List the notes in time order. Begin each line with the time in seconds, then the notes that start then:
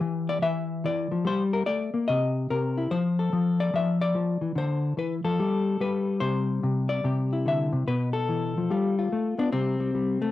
Already playing: G4 B4
0.01 E3
0.29 D5
0.42 E3 E5
0.84 E3 D5
1.11 F3
1.25 G3 C5
1.53 A#4
1.66 A3 D5
1.94 A#3
2.08 C3 D#5
2.50 C3 A#4
2.78 E4
2.91 F3 C5
3.19 A4
3.33 F3
3.60 D5
3.74 F3 E5
4.01 D5
4.15 F3
4.41 E3
4.55 D3 C5
4.97 E3 B4
5.24 F3 A4
5.40 G3
5.81 G3 B4
6.20 C3 C5
6.63 C3
6.89 D5
7.04 C3 G4
7.33 E4
7.46 D3 E5
7.73 C3
7.87 B2 B4
8.13 A4
8.29 E3
8.57 F3
8.70 G3 F4
8.99 F4
9.12 A3
9.38 B3 D4
9.52 C3 G3 C4
9.80 G3
9.95 G3
10.22 A3